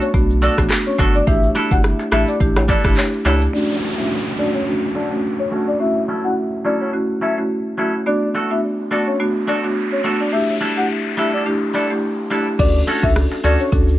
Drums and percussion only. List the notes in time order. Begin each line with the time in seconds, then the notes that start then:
0.01 shaker
0.14 kick, shaker
0.30 shaker
0.42 closed hi-hat, shaker
0.58 kick, cross-stick, shaker
0.70 cross-stick, clap, shaker
0.86 shaker
0.99 kick, closed hi-hat, shaker
1.15 shaker
1.27 kick, shaker
1.43 shaker
1.56 closed hi-hat, shaker
1.71 kick, shaker
1.83 cross-stick, shaker
2.00 shaker
2.12 cross-stick, closed hi-hat, shaker
2.28 shaker
2.40 kick, shaker
2.56 cross-stick, high timbale, shaker
2.69 kick, closed hi-hat, shaker
2.84 kick, cross-stick, shaker
2.97 clap, high timbale, shaker
3.13 shaker
3.25 closed hi-hat, high timbale, shaker
3.41 shaker
12.59 kick, crash, shaker
12.75 shaker
12.88 closed hi-hat, shaker
13.03 kick, shaker
13.16 cross-stick, shaker
13.32 shaker
13.44 closed hi-hat, shaker
13.60 shaker
13.72 kick, shaker
13.88 shaker